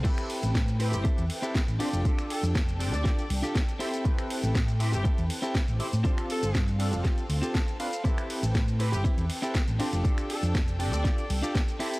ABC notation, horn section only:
X:1
M:4/4
L:1/16
Q:1/4=120
K:Am
V:1 name="Horn section"
z6 z G z8 | z2 A z4 d3 z6 | z6 z G z8 | z2 A3 z8 z3 |
z6 z G z8 | z2 A z4 d3 z6 |]